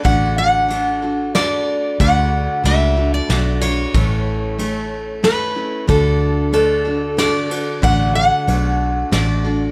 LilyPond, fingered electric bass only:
\new Staff \with { instrumentName = "Fingered electric bass" } { \clef bass \time 3/4 \key d \major \tempo 4 = 92 a,,2. | d,4 cis,4 b,,4 | a,,2. | d,2. |
a,,4 b,,4 a,,4 | }